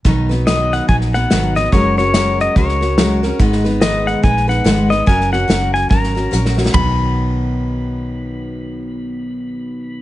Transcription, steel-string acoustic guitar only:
X:1
M:4/4
L:1/8
Q:"Swing" 1/4=144
K:B
V:1 name="Steel-string acoustic guitar"
[B,,D,F,B,DB] [F,B,DB] [B,,D,F,B,DB]2 [F,B,DB] [F,B,DB] [B,,D,F,B,DB] [F,B,DB] | [F,G,CFA] [CFA] [F,G,CFA]2 [G,CFA] [CFA] [F,G,CFA] [CFA] | [G,,D,G,B,DB] [G,B,DB] [G,,D,G,B,DB]2 [G,B,DB] [G,B,DB] [G,,D,G,B,DB] [G,B,DB] | [F,CFA] [CFA] [F,CFA]2 [F,CFA] [CFA] [F,CFA] [CFA] |
[B,,D,F,B,DB]8- | [B,,D,F,B,DB]8 |]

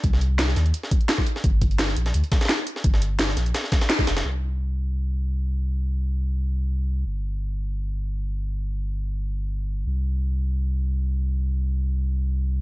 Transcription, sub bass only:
X:1
M:4/4
L:1/8
Q:1/4=171
K:Gm
V:1 name="Sub bass" clef=bass
C,,3 E,, z4 | G,,,3 B,,, D,, z3 | G,,,3 B,,, z3 F,,, | C,,8- |
C,,8 | G,,,8- | G,,,8 | C,,8- |
C,,8 |]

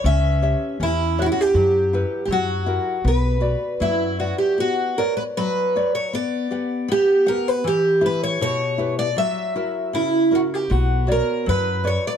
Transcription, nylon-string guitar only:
X:1
M:2/4
L:1/8
Q:1/4=79
K:Bm
V:1 name="Nylon-string guitar"
C [Gce] C [Gce] | F, [EBf] F, [EF^A] | B, [FBd] F, [FBd] | B, [Bcd] F, [Bcd] |
B, [GBf] B, [GBf] | E, [EGB] B,, [EGB] | F, [EF^A] C, [EFA] | B, [Fcd] F, [Bcd] |]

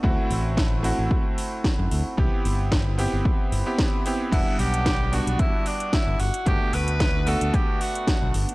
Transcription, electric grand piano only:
X:1
M:4/4
L:1/16
Q:"Swing 16ths" 1/4=112
K:G
V:1 name="Electric grand piano"
[A,CEF]6 [A,CEF]8- [A,CEF]2 | [B,CEG]6 [B,CEG]4- [B,CEG] [B,CEG]3 [B,CEG]2 | [G,B,Df]6 [G,B,DF]8 z2 | [A,B,DF]6 [A,B,DF]8- [A,B,DF]2 |]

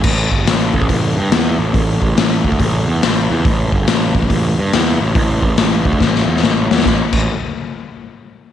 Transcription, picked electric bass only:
X:1
M:4/4
L:1/8
Q:"Swing" 1/4=141
K:C
V:1 name="Picked electric bass" clef=bass
A,,, G,,, A,,, A,,, A,,, G,, E,, A,,, | A,,, A,,, A,,, D,, A,,, E,, A,,, E,, | A,,, G,,, A,,, A,,, A,,, G,, E,, A,,, | A,,, A,,, A,,, D,, A,,, E,, A,,, E,, |
A,,, A,,, z6 |]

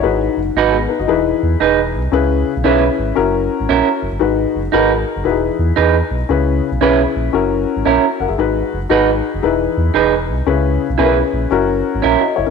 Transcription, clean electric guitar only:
X:1
M:4/4
L:1/8
Q:"Swing" 1/4=115
K:G#m
V:1 name="Clean electric guitar"
z2 [DFB] z3 [DGB] z | z2 [CEB] z3 [CEA] z | z2 [DFB] z3 [DGB] z | z2 [CEB] z3 [CEA] z |
z2 [DFB] z3 [DGB] z | z2 [EGB] z3 [CEA] z |]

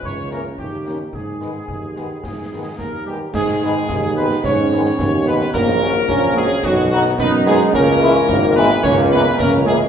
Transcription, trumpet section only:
X:1
M:2/4
L:1/8
Q:1/4=109
K:G#m
V:1 name="Trumpet section"
c A =G G | G4- | G2 A =G | G3 B |
c3 B | A3 G | F F B G | A3 B |
c B A G |]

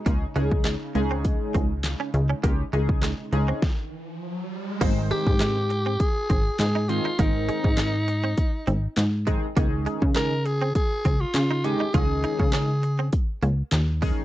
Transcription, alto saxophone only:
X:1
M:4/4
L:1/16
Q:1/4=101
K:Ab
V:1 name="Alto saxophone"
z16 | z16 | z2 G6 A4 A2 F2 | E12 z4 |
z4 B2 A2 A3 F3 G2 | A4 A4 z8 |]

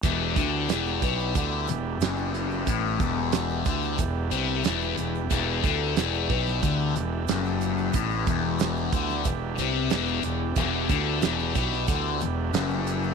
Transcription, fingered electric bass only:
X:1
M:4/4
L:1/8
Q:1/4=91
K:Em
V:1 name="Fingered electric bass" clef=bass
E,,, D,, E,,, B,,, D,, E,,, F,,,2 | A,,, E,,,2 D,, E,,, C,, E,,, E,,, | E,,, D,, E,,, B,,, D,, E,,, F,,,2 | A,,, E,,,2 D,, E,,, C,, E,,, E,,, |
E,,, D,, E,,, B,,, D,, E,,, F,,,2 |]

